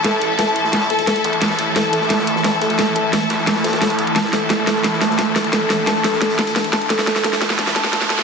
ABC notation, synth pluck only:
X:1
M:4/4
L:1/16
Q:1/4=175
K:Cmix
V:1 name="Synth pluck"
A z A z A2 z2 a2 A z A z A2 | z2 a2 A z A z A2 z2 a2 A z | A z A2 z2 a2 A z A z A z3 | a2 A z A z A2 z2 a2 A z A z |
A2 z2 a2 A z A z A2 z2 a2 | A z A z A2 z2 a2 A z A z A2 |]